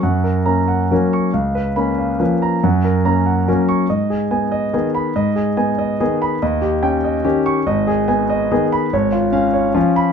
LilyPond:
<<
  \new Staff \with { instrumentName = "Grand piano" } { \time 3/4 \key gis \dorian \tempo 4 = 142 <fis'' cis'''>8 ais'8 ais''8 fis''8 ais'8 cis'''8 | eis''8 b'8 b''8 eis''8 b'8 ais''8 | fis''8 ais'8 ais''8 fis''8 ais'8 cis'''8 | dis''8 gis'8 gis''8 dis''8 gis'8 b''8 |
dis''8 gis'8 gis''8 dis''8 gis'8 b''8 | dis''8 g'8 g''8 dis''8 g'8 cis'''8 | dis''8 gis'8 gis''8 dis''8 gis'8 b''8 | \key cis \phrygian cis''8 eis'8 eis''8 cis''8 eis'8 b''8 | }
  \new Staff \with { instrumentName = "Grand piano" } { \time 3/4 \key gis \dorian fis,4 <ais cis'>4 <fis ais cis'>4 | cis,4 <ais cis'>4 <eis ais cis'>4 | fis,4 <ais cis'>4 <fis ais cis'>4 | gis,4 b4 <dis b>4 |
gis,4 b4 <dis b>4 | dis,4 cis'4 <dis cis'>4 | gis,,4 b4 <dis b>4 | \key cis \phrygian gis,,4 cis'4 <eis cis'>4 | }
>>